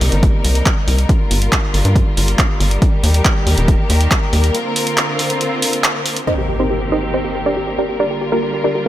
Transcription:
Already playing: string section C3 G3 A#3 D#4 A#4
0.01 analog synth bass C2, open hi-hat
0.12 analog synth bass G1, closed hi-hat
0.23 kick, closed hi-hat
0.44 analog synth bass C2, open hi-hat
0.55 closed hi-hat
0.66 kick, clap, closed hi-hat
0.88 analog synth bass C2, open hi-hat
0.99 closed hi-hat
1.09 string section D3 G3 F4, kick, closed hi-hat
1.31 analog synth bass G1, open hi-hat
1.42 closed hi-hat
1.52 kick, clap, closed hi-hat
1.74 analog synth bass G1, open hi-hat
1.85 analog synth bass G2, closed hi-hat
1.96 kick, closed hi-hat
2.17 analog synth bass G1, open hi-hat
2.28 closed hi-hat
2.39 kick, clap, closed hi-hat
2.60 analog synth bass G1, open hi-hat
2.71 closed hi-hat
2.82 string section D#3 A#3 G4 A#4, kick, closed hi-hat
3.03 analog synth bass D#2, open hi-hat
3.14 closed hi-hat
3.25 kick, clap, closed hi-hat
3.46 analog synth bass D#2, open hi-hat
3.57 analog synth bass D#1, closed hi-hat
3.68 kick, closed hi-hat
3.90 analog synth bass D#2, open hi-hat
4.01 closed hi-hat
4.11 kick, clap, closed hi-hat
4.33 analog synth bass D#2, open hi-hat
4.44 closed hi-hat
4.54 string section D3 C4 F4, closed hi-hat
4.76 open hi-hat
4.87 closed hi-hat
4.98 clap, closed hi-hat
5.19 open hi-hat
5.30 closed hi-hat
5.41 closed hi-hat
5.62 open hi-hat
5.73 closed hi-hat
5.84 clap, closed hi-hat
6.06 open hi-hat
6.17 closed hi-hat
6.27 string section D#3 A#3 C4 G4 A#4, synth pluck D#4 A#4 C5 D#5, impact
6.38 synth pluck G4
6.49 synth pluck G4
6.60 synth pluck C4 D#4 G4 C5
6.70 synth pluck G4
6.81 synth pluck G4
6.92 synth pluck D#4 A#4 C5 D#5
7.03 synth pluck G4
7.14 synth pluck C4 D#4 G4 C5
7.24 synth pluck G4
7.35 synth pluck G4
7.46 synth pluck D4 G4 A#4 D5
7.57 synth pluck G4
7.67 synth pluck G4
7.78 synth pluck D4 G4 A#4 D5
7.89 synth pluck G4
8.00 string section D3 G3 F4, synth pluck D4 G4 A#4 D5
8.11 synth pluck G4
8.21 synth pluck G4
8.32 synth pluck A#3 F4 G4 A#4
8.43 synth pluck G4
8.54 synth pluck G4
8.64 synth pluck D4 G4 A#4 D5
8.75 synth pluck G4

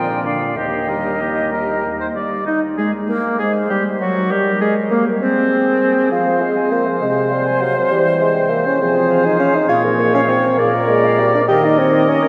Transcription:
Already playing: bassoon A#2, french horn F3, clarinet F4, oboe A#4, flute G5
0.25 french horn D3, clarinet D4, oboe D5, flute F5
0.57 bassoon D#2, french horn A#3, clarinet D#4, oboe G4, flute D#5
0.89 french horn G3, clarinet G4, oboe A#4
1.21 french horn A#3, clarinet D#4, oboe G4
1.52 french horn G3, clarinet G4, oboe A#4
1.85 french horn A#3, clarinet D#4
2.01 oboe C5
2.15 french horn G3, clarinet G4, oboe D5
2.46 oboe D#4, french horn D#4, clarinet D#4, bassoon D#4
2.77 french horn G#3, bassoon G#3, clarinet G#3, oboe G#4
3.08 oboe A#3, clarinet A#3, french horn A#3, bassoon A#3
3.39 french horn G#3, bassoon G#3, clarinet G#3, oboe G#4, flute C5
3.70 clarinet G3, french horn G3, bassoon G3, oboe G4
4.01 bassoon F#3, french horn F#3, clarinet F#3, oboe F#4
4.31 clarinet G3, bassoon G3, french horn G3, oboe G4, flute A#4
4.61 clarinet G#3, french horn G#3, bassoon G#3, oboe G#4
4.91 bassoon A#3, clarinet A#3, oboe A#3, french horn A#3
5.21 oboe C4, clarinet C4, bassoon C4, french horn C4, flute G#4
6.11 french horn F3, bassoon F4, clarinet G#4, oboe C5
6.26 clarinet C5
6.41 bassoon G#3, clarinet F5
6.56 clarinet G#5
6.72 bassoon A#3, clarinet F5
6.86 clarinet C5
7.01 french horn C3, bassoon G#3, clarinet G#4, flute C5
7.16 clarinet C5
7.31 bassoon G3, clarinet F5
7.45 clarinet G#5
7.61 bassoon F#3, clarinet F5
7.75 clarinet C5
7.90 french horn E3, bassoon G3, clarinet G4
8.05 clarinet C5
8.20 bassoon G#3, clarinet E5
8.35 clarinet G5
8.50 bassoon A#3, clarinet E5
8.65 bassoon C#4, clarinet C5
8.79 french horn F3, bassoon C4, flute G#4, clarinet G#4
8.94 clarinet C5
9.09 clarinet F5
9.24 bassoon D#4, clarinet G#5
9.40 bassoon C#4, clarinet F5
9.55 bassoon D#4, clarinet C5
9.69 french horn A#2, bassoon F4, clarinet G#4, oboe C#5
9.85 clarinet A#4
9.99 bassoon A#3, clarinet C#5
10.14 bassoon C#4, clarinet F5
10.28 bassoon C4, clarinet C#5
10.44 clarinet A#4
10.58 french horn A#2, bassoon A#3, clarinet G#4, flute A#4, oboe D5
10.74 clarinet A#4
10.89 bassoon G#3, clarinet D5
11.04 clarinet F5
11.18 bassoon G3, clarinet D5
11.34 bassoon D4, clarinet A#4
11.48 french horn D#3, bassoon G4, clarinet G4, flute A#4, oboe D#5
11.64 bassoon D#4, clarinet A#4
11.79 bassoon C4, clarinet C#5
11.94 clarinet D#5
12.08 bassoon C#4, clarinet C#5
12.23 clarinet A#4

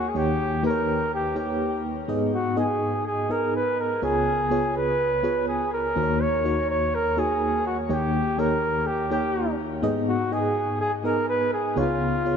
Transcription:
Already playing: fm electric piano D#2 D#3 A#3 D#4 F4 F#4 C#5, flugelhorn F#4
0.09 flugelhorn G#4
0.14 fm electric piano D#2 D#3 A#3 D#4 G4 C#5, flugelhorn G4
0.63 fm electric piano A#3 D#4 G4 B4, flugelhorn A#4
0.70 fm electric piano C#5
1.14 flugelhorn G4
1.35 fm electric piano A#3 D#4 G4 C#5, flugelhorn G4
2.08 fm electric piano G#2 B3 D#4 G#4 D#5
2.35 flugelhorn F#4
2.56 fm electric piano B3 D#4 G#4 D#5, flugelhorn G#4
3.07 flugelhorn G#4
3.29 fm electric piano B3 D#4 G#4 D#5, flugelhorn A#4
3.56 flugelhorn B4
3.80 flugelhorn A#4
4.02 fm electric piano C#2 C#3 B3 F4 G#4 C#5, flugelhorn G#4
4.50 fm electric piano B3 F4 G#4 C#5
4.76 flugelhorn B4
5.23 fm electric piano B3 F4 G#4 C#5
5.48 flugelhorn G#4
5.73 flugelhorn A#4
5.96 fm electric piano D#2 D#3 A#3 D#4 F#4 C5
6.03 fm electric piano C#5
6.22 flugelhorn C#5
6.44 fm electric piano A#3 D#4 F#4 C#5
6.70 flugelhorn C#5
6.95 flugelhorn A#4
7.17 fm electric piano A#3 D#4 F#4 C#5, flugelhorn G#4
7.67 flugelhorn F#4
7.89 fm electric piano D#2 D#3 A#3 D#4 G4 C#5, flugelhorn G4
8.38 fm electric piano A#3 D#4 G4 C#5, flugelhorn A#4
8.87 flugelhorn G4
9.11 fm electric piano A#3 D#4 G4 C#5, flugelhorn G4
9.83 fm electric piano G#2 B3 D#4 G#4 D#5
10.08 flugelhorn F#4
10.32 fm electric piano B3 D#4 G#4 D#5, flugelhorn G#4
10.81 flugelhorn G#4
11.04 fm electric piano B3 D#4 G#4 D#5, flugelhorn A#4
11.29 flugelhorn B4
11.53 flugelhorn G#4
11.76 fm electric piano C#2 C#3 B3 D#4 G#4 C#5, flugelhorn F4
11.82 fm electric piano F4
12.25 fm electric piano B3 F4 G#4 C#5

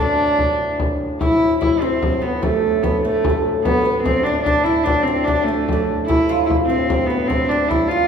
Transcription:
Already playing: harmonium D2 A2
0.00 viola da gamba D4, oud D4
0.39 frame drum
0.80 frame drum
1.00 frame drum
1.20 harmonium D2 A2, viola da gamba E4, oud E4, frame drum
1.61 oud E4, viola da gamba E4, frame drum
1.82 viola da gamba C4, oud C4, frame drum
2.03 frame drum
2.22 oud B3, viola da gamba B3
2.42 viola da gamba A3, oud A3, frame drum
2.82 viola da gamba B3, oud B3, frame drum
3.02 viola da gamba A3, oud A3, frame drum
3.24 frame drum
3.30 oud A3
3.63 viola da gamba B3, oud B3, frame drum
3.85 oud B3
4.03 viola da gamba C4, oud C4, frame drum
4.23 viola da gamba D4, oud D4, frame drum
4.43 viola da gamba D4, oud D4, frame drum
4.64 viola da gamba E4, oud E4
4.84 viola da gamba D4, oud D4, frame drum
5.03 viola da gamba C4
5.08 oud C4
5.24 viola da gamba D4, oud D4, frame drum
5.44 viola da gamba A3
5.48 oud A3
5.69 oud D4, frame drum
5.89 frame drum
6.05 viola da gamba E4, oud E4
6.09 harmonium D2 A2, frame drum
6.29 oud F4
6.45 viola da gamba E4
6.50 frame drum
6.66 viola da gamba C4, oud C4
6.71 frame drum
6.90 oud C4, frame drum
7.06 viola da gamba B3, oud B3
7.27 viola da gamba C4, oud C4, frame drum
7.49 viola da gamba D4, oud D4
7.69 viola da gamba E4, oud E4, frame drum
7.88 viola da gamba F4, oud F4, frame drum

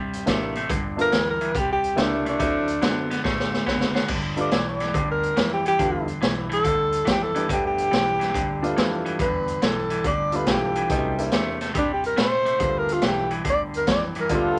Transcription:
Already playing: fingered electric bass G2, clean electric guitar C3 G3
0.13 closed hi-hat
0.26 fingered electric bass A1, clean electric guitar C3 A3, upright piano G3 A#3 D4 E4, kick, snare, closed hi-hat
0.55 clean electric guitar C3 A3, closed hi-hat
0.70 fingered electric bass G1, clean electric guitar G2 D3, kick, closed hi-hat
0.97 upright piano A3 B3 D4 F4, closed hi-hat
1.02 tenor saxophone A#4
1.12 fingered electric bass D2, clean electric guitar G2 E3, snare, closed hi-hat
1.31 tenor saxophone A#4
1.41 clean electric guitar G2 E3, closed hi-hat
1.55 fingered electric bass C2, clean electric guitar C3 G3, kick, closed hi-hat
1.60 tenor saxophone G4
1.73 tenor saxophone G4
1.84 closed hi-hat
1.96 fingered electric bass C#2, clean electric guitar C3 A3, upright piano G3 A#3 D4 E4, snare, closed hi-hat
2.02 tenor saxophone D4
2.25 clean electric guitar C3 A3, tenor saxophone D4, closed hi-hat
2.39 fingered electric bass D2, clean electric guitar D3 A3, upright piano F#3 A3 C4 E4, kick, closed hi-hat
2.68 closed hi-hat
2.81 fingered electric bass F#2, clean electric guitar D3 B3, upright piano F#3 A3 C4 D4, snare, closed hi-hat
3.10 clean electric guitar D3 B3, snare, closed hi-hat
3.24 fingered electric bass A2, clean electric guitar D3 A3, kick, snare
3.40 snare
3.54 snare
3.66 fingered electric bass F#1, clean electric guitar D3 B3, kick, snare
3.81 snare
3.94 clean electric guitar D3 B3, snare
4.08 fingered electric bass G1, clean electric guitar G2 D3, kick, crash
4.36 upright piano G3 A3 B3 D4 F4, closed hi-hat
4.41 tenor saxophone D5
4.51 fingered electric bass B1, clean electric guitar G2 E3, snare, closed hi-hat
4.69 tenor saxophone D5
4.80 clean electric guitar G2 E3, snare, closed hi-hat
4.94 fingered electric bass D2, clean electric guitar G2 D3, kick, closed hi-hat
5.12 tenor saxophone A#4
5.23 closed hi-hat
5.36 fingered electric bass F2, clean electric guitar G2 E3, snare, closed hi-hat
5.53 tenor saxophone G4
5.65 clean electric guitar G2 E3, tenor saxophone G4, closed hi-hat
5.79 fingered electric bass E2, clean electric guitar G2 D3, upright piano G3 A3 B3 D4 F4, kick, closed hi-hat
6.08 closed hi-hat
6.21 fingered electric bass B1, clean electric guitar G2 E3, snare, closed hi-hat
6.49 clean electric guitar G2 E3, closed hi-hat
6.54 tenor saxophone A4
6.63 fingered electric bass D2, clean electric guitar G2 D3, kick, closed hi-hat
6.92 closed hi-hat
7.05 fingered electric bass F2, clean electric guitar G2 E3, kick, snare, closed hi-hat
7.11 tenor saxophone G4
7.23 tenor saxophone A4
7.35 clean electric guitar G2 E3, upright piano G3 A3 B3 D4 G4, closed hi-hat
7.49 fingered electric bass G1, clean electric guitar G2 D3, kick, closed hi-hat
7.53 tenor saxophone G4
7.67 tenor saxophone G4
7.78 closed hi-hat
7.91 fingered electric bass B1, clean electric guitar G2 E3, snare, closed hi-hat
8.19 clean electric guitar G2 E3, snare, closed hi-hat
8.34 fingered electric bass D2, clean electric guitar G2 D3, kick, closed hi-hat
8.62 upright piano G3 A3 B3 D4 F4, closed hi-hat
8.77 fingered electric bass F2, clean electric guitar G2 E3, snare, closed hi-hat
9.05 clean electric guitar G2 E3, closed hi-hat
9.19 fingered electric bass E2, clean electric guitar G2 D3, tenor saxophone B4, kick, closed hi-hat
9.48 closed hi-hat
9.62 fingered electric bass B1, clean electric guitar G2 E3, tenor saxophone A4, snare, closed hi-hat
9.90 clean electric guitar G2 E3, closed hi-hat
10.04 fingered electric bass D2, clean electric guitar G2 D3, tenor saxophone D5, kick, closed hi-hat
10.32 upright piano G3 A3 B3 D4 F4, tenor saxophone B4, closed hi-hat
10.46 fingered electric bass B1, clean electric guitar G2 E3, kick, snare, closed hi-hat
10.51 tenor saxophone G4
10.75 clean electric guitar G2 E3, closed hi-hat
10.90 fingered electric bass C2, clean electric guitar C3 G3, upright piano F#3 A3 B3 C#4 D#4, kick, closed hi-hat
11.18 upright piano G3 A#3 C4 D4 E4, closed hi-hat
11.31 fingered electric bass E2, clean electric guitar C3 A3, snare, closed hi-hat
11.61 clean electric guitar C3 A3, snare, closed hi-hat
11.74 fingered electric bass G2, clean electric guitar C3 G3, kick, closed hi-hat
11.78 tenor saxophone D4
11.93 tenor saxophone G4
12.04 tenor saxophone A#4, closed hi-hat
12.16 fingered electric bass A#2, clean electric guitar C3 A3, snare, closed hi-hat
12.22 tenor saxophone C5
12.45 clean electric guitar C3 A3, closed hi-hat
12.58 fingered electric bass G1, clean electric guitar G2 D3, upright piano G3 A3 B3 D4 F4, kick, closed hi-hat
12.79 tenor saxophone A#4
12.89 closed hi-hat
12.93 tenor saxophone F4
13.01 fingered electric bass B1, clean electric guitar G2 E3, snare, closed hi-hat
13.07 tenor saxophone G4
13.31 clean electric guitar G2 E3, closed hi-hat
13.44 fingered electric bass D2, clean electric guitar G2 D3, kick, closed hi-hat
13.50 tenor saxophone D5
13.74 tenor saxophone A#4, closed hi-hat
13.87 fingered electric bass F2, clean electric guitar G2 E3, kick, snare, closed hi-hat
13.92 tenor saxophone D5
14.15 clean electric guitar G2 E3, closed hi-hat
14.20 tenor saxophone A#4
14.29 fingered electric bass G1, clean electric guitar G2 D3, upright piano G3 A3 B3 D4 F4, horn section B3 F4 A4, kick, closed hi-hat
14.35 tenor saxophone F4

